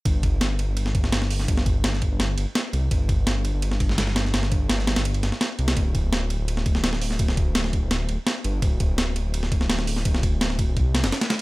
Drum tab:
RD |x-x-x-x-x-x-x---|x-x-x-x-x-x-x-x-|x-x-x-x-x-x-x-x-|x-x-x-xxxxx-x-xx|
HH |--------------o-|----------------|----------------|----------------|
SD |----o----o-ooo-o|-o--oo--o---o---|----o----o-ooooo|oo--oooo--ooo--o|
BD |o-o-------o-----|o-o---o---------|o-o-------o-----|--o-------------|

RD |x-x-x-x-x-x-x---|x-x-x-x-x-x-x-x-|x-x-x-x-x-x-x---|x-x-x-x-x-xxxxx-|
HH |--------------o-|----------------|--------------o-|----------------|
SD |----o----o-ooo-o|-o--oo--o---o---|----o----o-ooo-o|-o--oo----ooooo-|
BD |o-o-------o-----|o-o---o---------|o-o-------o-----|o-o---o-o-------|